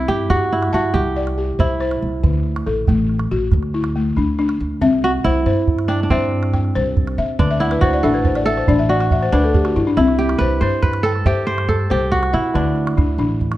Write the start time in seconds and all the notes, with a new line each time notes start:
Already playing: E4
0.08 G2 G4 G5
0.30 G2 F#4 G4, calabash thump
0.53 E4
0.63 calabash click
0.73 G2 F#4 E5 A5
0.94 C2 G4, calabash thump
1.16 D5
1.27 calabash click
1.38 G4
1.59 C2 E4 C5, calabash thump
1.80 C5, calabash click
1.91 calabash click
2.02 C2
2.23 D2 D3, calabash thump
2.56 calabash click
2.66 A1 A4, calabash click
2.87 A1 A3, calabash thump
3.09 calabash click
3.19 calabash click
3.31 A1 F#4
3.52 D2, calabash thump, calabash click
3.63 calabash click
3.74 E4
3.84 calabash click
3.96 A3
4.17 D2 D4, calabash thump, calabash click
4.39 D4, calabash click
4.49 calabash click
4.60 D2
4.81 C2 C4 E5, calabash thump
4.93 calabash click
5.04 F#4
5.24 C2 E4 C5, calabash thump
5.46 G2 C5
5.68 calabash thump
5.79 calabash click
5.88 D4 G5
6.00 D4, calabash click
6.10 G2 C4 C5 E5, calabash thump
6.32 calabash click
6.43 calabash click
6.53 G5, calabash thump, calabash click
6.64 calabash click
6.75 C2 C5
6.97 calabash thump
7.07 calabash click
7.18 C3 E5
7.39 D2 D3 D4, calabash thump
7.50 E5, calabash click
7.60 E4 F#5
7.71 B4, calabash click
7.81 D2 F#4 C5, calabash thump
7.93 D5
8.03 A1 D4 A4 E5
8.14 B4
8.25 C5, calabash thump
8.35 D5, calabash click
8.46 A4 E5
8.57 C5, calabash click
8.68 A1 D4 D5, calabash thump
8.79 E5
8.89 F#4 D5, calabash click
9.00 F#5, calabash click
9.11 E5, calabash thump, calabash click
9.21 C5, calabash click
9.32 D2 D4 B4
9.44 A4
9.54 G4, calabash thump
9.65 F#4, calabash click
9.76 G2 E4
9.87 D4
9.97 C2 C4 E4 E5, calabash thump
10.08 calabash click
10.19 G4
10.29 calabash click
10.38 C2 B4 C5, calabash thump
10.61 G2 C5
10.82 B4, calabash thump
10.93 calabash click
11.03 A4 G5
11.16 calabash click
11.26 G2 G4 C5 E5, calabash thump
11.47 C5, calabash click
11.58 calabash click
11.68 A4, calabash thump, calabash click
11.79 calabash click
11.90 C2 G4 C5
12.12 F#4, calabash thump
12.23 calabash click
12.33 C3 E4 E5
12.54 D2 D3 D4, calabash thump
12.76 calabash click
12.87 calabash click
12.97 D2 D4, calabash thump, calabash click
13.18 A1 D4, calabash click
13.41 calabash thump
13.52 calabash click